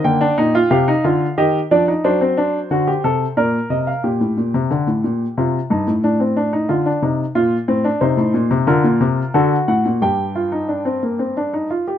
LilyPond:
<<
  \new Staff \with { instrumentName = "Grand piano" } { \time 3/4 \key g \phrygian \tempo 4 = 90 << { g''4 f''4 ees''8 d''8 | c''2 d''8 ees''16 f''16 | r2. | r2. |
\key g \minor c''4 bes'4 a'8 fis''8 | g''2~ g''8 r8 | } \\ { bes16 d'16 ees'16 f'16 g'16 ees'16 f'8 g'8 d'16 ees'16 | d'16 c'16 d'8 fis'16 g'16 a'8 bes'4 | g'2 f'8 ees'8 | d'16 c'16 d'16 ees'16 f'16 d'16 ees'8 f'8 c'16 d'16 |
ees'4 f'4 fis'4 | g'8 f'16 ees'16 d'16 c'16 bes16 c'16 d'16 ees'16 f'16 g'16 | } >> }
  \new Staff \with { instrumentName = "Grand piano" } { \clef bass \time 3/4 \key g \phrygian d8 bes,8 c8 d8 ees8 f8 | fis4 d8 c8 bes,8 c8 | bes,16 a,16 bes,16 c16 d16 a,16 bes,8 c8 g,16 a,16 | a,4 d8 c8 bes,8 a,8 |
\key g \minor c16 a,16 bes,16 c16 d16 bes,16 c8 d8 a,16 bes,16 | g,2~ g,8 r8 | }
>>